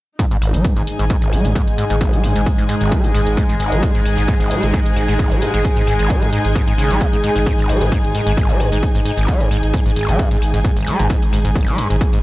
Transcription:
0.19 G#2 G#3 D#4, kick, closed hi-hat
0.31 G#2, closed hi-hat
0.42 G#1, open hi-hat
0.54 G#1 G#3 G#4, closed hi-hat
0.64 F#2, kick, closed hi-hat
0.71 G#5
0.77 G#1 G#2, closed hi-hat
0.87 open hi-hat
0.99 G#1 G#2, closed hi-hat
1.10 G#2, kick, closed hi-hat
1.22 G#1, closed hi-hat
1.33 G#1 G#3, open hi-hat
1.45 G#1 F#2, closed hi-hat
1.55 G#2, kick, closed hi-hat
1.67 G#1, closed hi-hat
1.78 G#2, open hi-hat
1.90 G#1 G#2, closed hi-hat
2.01 G#1, kick, closed hi-hat
2.13 G#3, closed hi-hat
2.24 G#1 F#2, open hi-hat
2.36 G#1 G#2, closed hi-hat
2.46 kick, closed hi-hat
2.58 G#1 G#2, closed hi-hat
2.69 G#2, open hi-hat
2.81 G#1, closed hi-hat
2.92 G#3, kick, closed hi-hat
3.04 F#2, closed hi-hat
3.14 G#1 G#2, open hi-hat
3.27 G#1, closed hi-hat
3.37 G#2, kick, closed hi-hat
3.49 G#1 G#2, closed hi-hat
3.60 G#1, open hi-hat
3.72 G#1 G#3, closed hi-hat
3.83 F#2, kick, closed hi-hat
3.95 G#2, closed hi-hat
4.05 G#1, open hi-hat
4.17 G#1 G#2, closed hi-hat
4.28 G#2, kick, closed hi-hat
4.40 G#1, closed hi-hat
4.51 G#3, open hi-hat
4.63 G#1 F#2, closed hi-hat
4.73 G#2, kick, closed hi-hat
4.86 closed hi-hat
4.96 G#1 G#2, open hi-hat
5.08 G#1 G#2, closed hi-hat
5.19 G#1, kick, closed hi-hat
5.31 G#1 G#3, closed hi-hat
5.42 F#2, open hi-hat
5.54 G#1 G#2, closed hi-hat
5.65 kick, closed hi-hat
5.77 G#2, closed hi-hat
5.87 G#1 G#2, open hi-hat
5.99 G#1, closed hi-hat
6.10 G#3, kick, closed hi-hat
6.22 G#1 F#2, closed hi-hat
6.33 G#2, open hi-hat
6.45 G#1, closed hi-hat
6.55 G#2, kick, closed hi-hat
6.67 G#2, closed hi-hat
6.78 G#1 C#3, open hi-hat
6.90 G#1 G#3, closed hi-hat
7.01 B2, kick, closed hi-hat
7.13 G#1 G#2, closed hi-hat
7.24 G#2, open hi-hat
7.36 G#1 G#2, closed hi-hat
7.46 G#2, kick, closed hi-hat
7.58 G#1, closed hi-hat
7.69 G#1 G#3, open hi-hat
7.81 G#1 F#2, closed hi-hat
7.92 G#2, kick, closed hi-hat
8.04 G#1, closed hi-hat
8.15 G#2, open hi-hat
8.27 G#1 G#2, closed hi-hat
8.37 G#1, kick, closed hi-hat
8.49 G#3, closed hi-hat
8.60 G#1 F#2, open hi-hat
8.72 G#1 G#2, closed hi-hat
8.83 kick, closed hi-hat
8.95 G#1 G#2, closed hi-hat
9.05 G#2, open hi-hat
9.17 G#1, closed hi-hat
9.28 G#3, kick, closed hi-hat
9.40 F#2, closed hi-hat
9.51 G#1 G#2, open hi-hat
9.63 G#1, closed hi-hat
9.74 G#2, kick, closed hi-hat
9.86 G#1 G#2, closed hi-hat
9.96 G#1, open hi-hat
10.08 G#1 G#3, closed hi-hat
10.19 F#2, kick, closed hi-hat
10.31 G#2, closed hi-hat
10.42 G#1, open hi-hat
10.54 G#1 G#2, closed hi-hat
10.65 G#2, kick, closed hi-hat
10.77 G#1, closed hi-hat
10.87 G#3, open hi-hat
10.99 G#1 F#2, closed hi-hat
11.10 G#2, kick, closed hi-hat
11.22 closed hi-hat
11.33 G#1 G#2, open hi-hat
11.45 G#1 G#2, closed hi-hat
11.56 G#1, kick, closed hi-hat
11.67 G#1 G#3, closed hi-hat
11.78 F#2, open hi-hat
11.90 G#1 G#2, closed hi-hat
12.01 kick, closed hi-hat
12.13 G#2, closed hi-hat

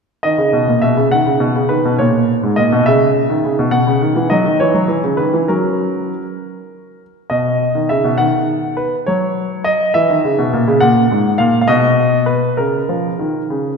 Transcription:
0.23 D#3 D#5
0.38 C#3
0.53 B2
0.68 A#2
0.82 B2 E5
0.97 C#3
1.11 D#3 F#5
1.26 C#3
1.40 B2
1.55 C#3
1.69 D#3 B4
1.85 B2
1.99 A#2 C#5
2.43 G#2
2.56 A#2 D#5
2.72 B2
2.86 C#3 E5
3.30 D#3
3.45 C#3
3.59 B2
3.71 B2 F#5
3.87 C#3
4.02 D#3
4.16 E3
4.30 F#3 D#5
4.45 D#3
4.60 E3 C#5
4.74 F#3
4.88 E3
5.03 C#3
5.17 D#3 B4
5.34 E3
5.48 F#3 C#4 F#4 A#4
7.30 B2 D#5
7.75 D#3
7.89 C#3 E5
8.04 B2
8.18 D#3 F#5
8.77 B4
9.07 F#3 C#5
9.64 D#5
9.94 E3 E5
10.10 D#3
10.25 C#3
10.39 B2
10.53 A#2
10.67 C#3
10.80 A#2 F#5
11.11 G#2
11.38 A#2 F5
11.61 F5
11.68 B2 D#5
12.26 B4
12.57 C#3 A#4
12.89 F3
13.19 D#3
13.50 C#3

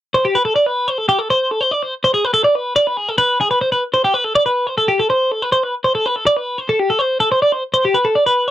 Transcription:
0.14 C5
0.25 G4
0.35 B4
0.45 A4
0.56 D5
0.66 B4
0.88 C5
0.98 A4
1.09 G4
1.19 A4
1.30 C5
1.51 A4
1.61 C5
1.71 D5
1.83 C5
2.04 C5
2.14 G#4
2.25 B4
2.34 A4
2.44 D5
2.55 B4
2.76 D5
2.87 B4
2.97 G#4
3.09 A4
3.18 B4
3.41 G#4
3.51 B4
3.61 C5
3.72 B4
3.94 C5
4.04 G4
4.14 B4
4.24 A4
4.35 D5
4.46 B4
4.67 C5
4.78 A4
4.88 G4
5.00 A4
5.10 C5
5.32 A4
5.42 B4
5.52 C5
5.64 B4
5.84 C5
5.95 A4
6.06 B4
6.16 A4
6.27 D5
6.37 B4
6.58 C5
6.69 A4
6.79 G4
6.90 A4
6.99 C5
7.20 A4
7.32 C5
7.42 D5
7.52 C5
7.74 C5
7.85 G4
7.94 B4
8.05 A4
8.15 D5
8.26 B4

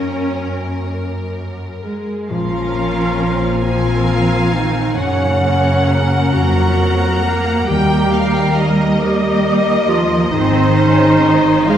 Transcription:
Already playing: F#2 C#4 A#4 C#6
0.01 A#3
0.47 C#4
0.93 A#4
1.83 G#3 G#4 A#4
2.29 A#1 A#2 F3 C#4 F4 A#4 F5
2.75 A#3
3.19 C4
3.63 F3 C4 F4 A#4 F5 G#5
4.08 A#4
4.52 D#3 D#4 F4
4.97 F#2 C#3 A#3 C#4 C#5 F#5
5.43 A#3 C#5
5.88 C#4 A#4
6.33 F2 F#3 A#3 F#4 A#5
6.80 A#4
7.23 A#3 F#4 A#4
7.67 D#2 D#3 G3 G4 A#4 G5
8.13 D#4 F5 G5
8.57 G4 D#5
9.00 G3 G4 A#4 D#5
9.46 D#5
9.88 F3 F4 A#4
10.31 G#1 G#2 D#3 C4 D#4 C5
10.78 G#3 C#4
11.23 D#4
11.68 G#3 F4 G#4 C5 F5

